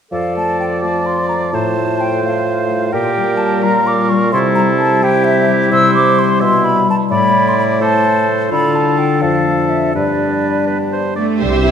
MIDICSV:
0, 0, Header, 1, 11, 480
1, 0, Start_track
1, 0, Tempo, 466200
1, 128, Time_signature, 6, 3, 24, 8
1, 8765, Tempo, 484653
1, 11932, End_track
2, 0, Start_track
2, 0, Title_t, "Flute"
2, 0, Program_c, 0, 73
2, 123, Note_on_c, 0, 77, 49
2, 353, Note_off_c, 0, 77, 0
2, 376, Note_on_c, 0, 81, 46
2, 608, Note_off_c, 0, 81, 0
2, 614, Note_on_c, 0, 79, 38
2, 676, Note_off_c, 0, 79, 0
2, 851, Note_on_c, 0, 81, 45
2, 1094, Note_on_c, 0, 84, 47
2, 1109, Note_off_c, 0, 81, 0
2, 1315, Note_off_c, 0, 84, 0
2, 1321, Note_on_c, 0, 82, 46
2, 1383, Note_off_c, 0, 82, 0
2, 1562, Note_on_c, 0, 81, 47
2, 2067, Note_on_c, 0, 79, 48
2, 2082, Note_off_c, 0, 81, 0
2, 2301, Note_off_c, 0, 79, 0
2, 2312, Note_on_c, 0, 77, 50
2, 3014, Note_on_c, 0, 79, 57
2, 3029, Note_off_c, 0, 77, 0
2, 3474, Note_on_c, 0, 81, 53
2, 3489, Note_off_c, 0, 79, 0
2, 3737, Note_on_c, 0, 82, 62
2, 3753, Note_off_c, 0, 81, 0
2, 3984, Note_on_c, 0, 86, 59
2, 3999, Note_off_c, 0, 82, 0
2, 4212, Note_on_c, 0, 85, 52
2, 4227, Note_off_c, 0, 86, 0
2, 4444, Note_off_c, 0, 85, 0
2, 4450, Note_on_c, 0, 84, 72
2, 4512, Note_off_c, 0, 84, 0
2, 4686, Note_on_c, 0, 82, 59
2, 4748, Note_off_c, 0, 82, 0
2, 4929, Note_on_c, 0, 81, 62
2, 5176, Note_on_c, 0, 79, 68
2, 5192, Note_off_c, 0, 81, 0
2, 5398, Note_on_c, 0, 76, 66
2, 5413, Note_off_c, 0, 79, 0
2, 5672, Note_off_c, 0, 76, 0
2, 5897, Note_on_c, 0, 88, 78
2, 6122, Note_off_c, 0, 88, 0
2, 6128, Note_on_c, 0, 86, 63
2, 6372, Note_on_c, 0, 84, 62
2, 6388, Note_off_c, 0, 86, 0
2, 6606, Note_off_c, 0, 84, 0
2, 6615, Note_on_c, 0, 84, 71
2, 6843, Note_on_c, 0, 83, 63
2, 6859, Note_off_c, 0, 84, 0
2, 7082, Note_off_c, 0, 83, 0
2, 7105, Note_on_c, 0, 81, 64
2, 7167, Note_off_c, 0, 81, 0
2, 7318, Note_on_c, 0, 83, 66
2, 7707, Note_on_c, 0, 84, 50
2, 7723, Note_off_c, 0, 83, 0
2, 7800, Note_off_c, 0, 84, 0
2, 7806, Note_on_c, 0, 83, 57
2, 7868, Note_off_c, 0, 83, 0
2, 8054, Note_on_c, 0, 81, 59
2, 8506, Note_off_c, 0, 81, 0
2, 8777, Note_on_c, 0, 83, 70
2, 9005, Note_on_c, 0, 81, 53
2, 9020, Note_off_c, 0, 83, 0
2, 9234, Note_on_c, 0, 79, 45
2, 9249, Note_off_c, 0, 81, 0
2, 9463, Note_on_c, 0, 77, 49
2, 9478, Note_off_c, 0, 79, 0
2, 9935, Note_on_c, 0, 76, 43
2, 9950, Note_off_c, 0, 77, 0
2, 10176, Note_off_c, 0, 76, 0
2, 10182, Note_on_c, 0, 74, 40
2, 10898, Note_off_c, 0, 74, 0
2, 11932, End_track
3, 0, Start_track
3, 0, Title_t, "Violin section"
3, 0, Program_c, 1, 48
3, 11641, Note_on_c, 1, 76, 38
3, 11932, Note_off_c, 1, 76, 0
3, 11932, End_track
4, 0, Start_track
4, 0, Title_t, "Oboe"
4, 0, Program_c, 2, 68
4, 134, Note_on_c, 2, 74, 32
4, 1585, Note_on_c, 2, 72, 35
4, 1600, Note_off_c, 2, 74, 0
4, 3006, Note_off_c, 2, 72, 0
4, 3013, Note_on_c, 2, 70, 40
4, 4427, Note_off_c, 2, 70, 0
4, 4459, Note_on_c, 2, 69, 39
4, 5189, Note_on_c, 2, 67, 42
4, 5204, Note_off_c, 2, 69, 0
4, 5889, Note_off_c, 2, 67, 0
4, 5895, Note_on_c, 2, 72, 47
4, 6596, Note_on_c, 2, 76, 41
4, 6612, Note_off_c, 2, 72, 0
4, 7066, Note_off_c, 2, 76, 0
4, 7325, Note_on_c, 2, 74, 44
4, 8043, Note_on_c, 2, 72, 38
4, 8058, Note_off_c, 2, 74, 0
4, 8764, Note_off_c, 2, 72, 0
4, 8773, Note_on_c, 2, 69, 40
4, 9435, Note_off_c, 2, 69, 0
4, 9476, Note_on_c, 2, 69, 34
4, 10182, Note_off_c, 2, 69, 0
4, 10194, Note_on_c, 2, 71, 30
4, 10856, Note_off_c, 2, 71, 0
4, 10902, Note_on_c, 2, 71, 33
4, 11014, Note_off_c, 2, 71, 0
4, 11153, Note_on_c, 2, 72, 35
4, 11378, Note_off_c, 2, 72, 0
4, 11384, Note_on_c, 2, 74, 31
4, 11496, Note_off_c, 2, 74, 0
4, 11932, End_track
5, 0, Start_track
5, 0, Title_t, "Violin section"
5, 0, Program_c, 3, 48
5, 11634, Note_on_c, 3, 72, 35
5, 11932, Note_off_c, 3, 72, 0
5, 11932, End_track
6, 0, Start_track
6, 0, Title_t, "Viola section"
6, 0, Program_c, 4, 48
6, 11629, Note_on_c, 4, 67, 33
6, 11932, Note_off_c, 4, 67, 0
6, 11932, End_track
7, 0, Start_track
7, 0, Title_t, "Clarinet"
7, 0, Program_c, 5, 71
7, 115, Note_on_c, 5, 69, 33
7, 855, Note_on_c, 5, 65, 31
7, 871, Note_off_c, 5, 69, 0
7, 1569, Note_off_c, 5, 65, 0
7, 1575, Note_on_c, 5, 65, 36
7, 2988, Note_off_c, 5, 65, 0
7, 3028, Note_on_c, 5, 67, 41
7, 3737, Note_on_c, 5, 65, 39
7, 3753, Note_off_c, 5, 67, 0
7, 4451, Note_off_c, 5, 65, 0
7, 4457, Note_on_c, 5, 64, 42
7, 5157, Note_off_c, 5, 64, 0
7, 5178, Note_on_c, 5, 64, 53
7, 7000, Note_off_c, 5, 64, 0
7, 7326, Note_on_c, 5, 64, 44
7, 8036, Note_on_c, 5, 69, 46
7, 8051, Note_off_c, 5, 64, 0
7, 8744, Note_off_c, 5, 69, 0
7, 8750, Note_on_c, 5, 65, 41
7, 9457, Note_on_c, 5, 62, 36
7, 9472, Note_off_c, 5, 65, 0
7, 10178, Note_off_c, 5, 62, 0
7, 10184, Note_on_c, 5, 62, 33
7, 11371, Note_off_c, 5, 62, 0
7, 11932, End_track
8, 0, Start_track
8, 0, Title_t, "Cello section"
8, 0, Program_c, 6, 48
8, 11397, Note_on_c, 6, 57, 41
8, 11623, Note_off_c, 6, 57, 0
8, 11638, Note_on_c, 6, 55, 47
8, 11877, Note_on_c, 6, 64, 51
8, 11880, Note_off_c, 6, 55, 0
8, 11932, Note_off_c, 6, 64, 0
8, 11932, End_track
9, 0, Start_track
9, 0, Title_t, "Harp"
9, 0, Program_c, 7, 46
9, 125, Note_on_c, 7, 41, 33
9, 376, Note_on_c, 7, 57, 27
9, 614, Note_on_c, 7, 72, 29
9, 844, Note_off_c, 7, 57, 0
9, 856, Note_on_c, 7, 57, 28
9, 1099, Note_on_c, 7, 65, 28
9, 1317, Note_off_c, 7, 57, 0
9, 1329, Note_on_c, 7, 57, 27
9, 1580, Note_on_c, 7, 45, 35
9, 1597, Note_off_c, 7, 41, 0
9, 1812, Note_off_c, 7, 57, 0
9, 1825, Note_on_c, 7, 57, 29
9, 2049, Note_off_c, 7, 72, 0
9, 2062, Note_on_c, 7, 72, 30
9, 2281, Note_off_c, 7, 57, 0
9, 2293, Note_on_c, 7, 57, 31
9, 2524, Note_off_c, 7, 65, 0
9, 2537, Note_on_c, 7, 65, 29
9, 2770, Note_off_c, 7, 57, 0
9, 2782, Note_on_c, 7, 57, 29
9, 3024, Note_on_c, 7, 46, 40
9, 3039, Note_off_c, 7, 45, 0
9, 3040, Note_off_c, 7, 57, 0
9, 3041, Note_off_c, 7, 72, 0
9, 3263, Note_on_c, 7, 55, 32
9, 3506, Note_on_c, 7, 73, 34
9, 3726, Note_off_c, 7, 55, 0
9, 3739, Note_on_c, 7, 55, 33
9, 3974, Note_off_c, 7, 65, 0
9, 3987, Note_on_c, 7, 65, 34
9, 4218, Note_off_c, 7, 55, 0
9, 4230, Note_on_c, 7, 55, 33
9, 4458, Note_on_c, 7, 48, 47
9, 4481, Note_off_c, 7, 46, 0
9, 4482, Note_off_c, 7, 65, 0
9, 4482, Note_off_c, 7, 73, 0
9, 4688, Note_off_c, 7, 55, 0
9, 4700, Note_on_c, 7, 55, 35
9, 4939, Note_on_c, 7, 70, 39
9, 5162, Note_off_c, 7, 55, 0
9, 5174, Note_on_c, 7, 55, 38
9, 5415, Note_on_c, 7, 64, 37
9, 5644, Note_off_c, 7, 55, 0
9, 5656, Note_on_c, 7, 55, 39
9, 5881, Note_off_c, 7, 48, 0
9, 5894, Note_on_c, 7, 48, 49
9, 5905, Note_off_c, 7, 70, 0
9, 6122, Note_off_c, 7, 55, 0
9, 6135, Note_on_c, 7, 55, 36
9, 6373, Note_on_c, 7, 72, 40
9, 6596, Note_off_c, 7, 55, 0
9, 6608, Note_on_c, 7, 55, 39
9, 6839, Note_off_c, 7, 64, 0
9, 6851, Note_on_c, 7, 64, 39
9, 7078, Note_off_c, 7, 55, 0
9, 7090, Note_on_c, 7, 55, 36
9, 7320, Note_on_c, 7, 45, 45
9, 7344, Note_off_c, 7, 48, 0
9, 7344, Note_off_c, 7, 55, 0
9, 7557, Note_on_c, 7, 57, 35
9, 7783, Note_off_c, 7, 72, 0
9, 7796, Note_on_c, 7, 72, 37
9, 8024, Note_off_c, 7, 57, 0
9, 8037, Note_on_c, 7, 57, 34
9, 8268, Note_off_c, 7, 64, 0
9, 8281, Note_on_c, 7, 64, 35
9, 8513, Note_off_c, 7, 57, 0
9, 8525, Note_on_c, 7, 57, 32
9, 8767, Note_on_c, 7, 50, 39
9, 8779, Note_off_c, 7, 72, 0
9, 8780, Note_off_c, 7, 45, 0
9, 8781, Note_off_c, 7, 64, 0
9, 8991, Note_off_c, 7, 57, 0
9, 9003, Note_on_c, 7, 57, 29
9, 9233, Note_on_c, 7, 65, 26
9, 9240, Note_on_c, 7, 74, 30
9, 9471, Note_on_c, 7, 41, 37
9, 9491, Note_off_c, 7, 50, 0
9, 9697, Note_off_c, 7, 57, 0
9, 9709, Note_on_c, 7, 57, 25
9, 9941, Note_off_c, 7, 74, 0
9, 9950, Note_on_c, 7, 62, 25
9, 9954, Note_on_c, 7, 74, 26
9, 10189, Note_on_c, 7, 43, 30
9, 10213, Note_off_c, 7, 57, 0
9, 10213, Note_off_c, 7, 65, 0
9, 10214, Note_off_c, 7, 41, 0
9, 10433, Note_on_c, 7, 59, 25
9, 10663, Note_off_c, 7, 74, 0
9, 10675, Note_on_c, 7, 74, 24
9, 10904, Note_off_c, 7, 59, 0
9, 10916, Note_on_c, 7, 59, 25
9, 11140, Note_off_c, 7, 62, 0
9, 11152, Note_on_c, 7, 62, 23
9, 11386, Note_off_c, 7, 59, 0
9, 11397, Note_on_c, 7, 59, 24
9, 11632, Note_on_c, 7, 48, 36
9, 11657, Note_off_c, 7, 62, 0
9, 11659, Note_off_c, 7, 43, 0
9, 11659, Note_off_c, 7, 59, 0
9, 11660, Note_off_c, 7, 74, 0
9, 11873, Note_on_c, 7, 55, 29
9, 11932, Note_off_c, 7, 48, 0
9, 11932, Note_off_c, 7, 55, 0
9, 11932, End_track
10, 0, Start_track
10, 0, Title_t, "Bassoon"
10, 0, Program_c, 8, 70
10, 122, Note_on_c, 8, 53, 36
10, 1535, Note_off_c, 8, 53, 0
10, 1576, Note_on_c, 8, 45, 40
10, 2989, Note_off_c, 8, 45, 0
10, 3023, Note_on_c, 8, 46, 44
10, 4462, Note_on_c, 8, 48, 51
10, 4477, Note_off_c, 8, 46, 0
10, 5877, Note_off_c, 8, 48, 0
10, 5883, Note_on_c, 8, 48, 48
10, 6602, Note_on_c, 8, 47, 46
10, 6618, Note_off_c, 8, 48, 0
10, 7069, Note_off_c, 8, 47, 0
10, 7318, Note_on_c, 8, 45, 53
10, 8720, Note_off_c, 8, 45, 0
10, 8770, Note_on_c, 8, 50, 43
10, 9463, Note_on_c, 8, 53, 37
10, 9477, Note_off_c, 8, 50, 0
10, 10181, Note_off_c, 8, 53, 0
10, 10187, Note_on_c, 8, 55, 33
10, 11373, Note_off_c, 8, 55, 0
10, 11932, End_track
11, 0, Start_track
11, 0, Title_t, "Double bass section"
11, 0, Program_c, 10, 48
11, 11629, Note_on_c, 10, 36, 36
11, 11932, Note_off_c, 10, 36, 0
11, 11932, End_track
0, 0, End_of_file